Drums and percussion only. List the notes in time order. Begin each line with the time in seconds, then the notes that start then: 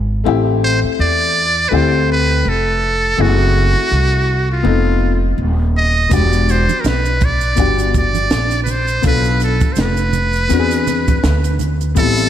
6.11 kick, closed hi-hat, maracas
6.33 closed hi-hat, maracas
6.49 closed hi-hat, maracas
6.69 closed hi-hat, high conga, maracas
6.84 snare, closed hi-hat, maracas
7.05 closed hi-hat, maracas
7.21 kick, closed hi-hat, high conga, low conga, maracas
7.41 closed hi-hat, maracas
7.57 kick, closed hi-hat, maracas
7.79 closed hi-hat, maracas
7.94 kick, closed hi-hat, low conga, maracas
8.15 closed hi-hat, high conga, maracas
8.31 snare, closed hi-hat, maracas
8.51 closed hi-hat, maracas
8.66 closed hi-hat, low conga, maracas
8.87 closed hi-hat, maracas
9.03 kick, closed hi-hat, maracas
9.24 closed hi-hat, maracas
9.40 closed hi-hat, maracas
9.61 kick, closed hi-hat, high conga, maracas
9.76 snare, closed hi-hat, maracas
9.97 closed hi-hat, maracas
10.13 closed hi-hat, high conga, low conga, maracas
10.33 closed hi-hat, maracas
10.49 closed hi-hat, maracas
10.71 closed hi-hat, maracas
10.87 closed hi-hat, low conga, maracas
11.08 kick, closed hi-hat, high conga, maracas
11.24 snare, closed hi-hat, maracas
11.44 closed hi-hat, maracas
11.59 closed hi-hat, low conga, maracas
11.81 closed hi-hat, maracas
11.96 kick, closed hi-hat, maracas
12.17 closed hi-hat, maracas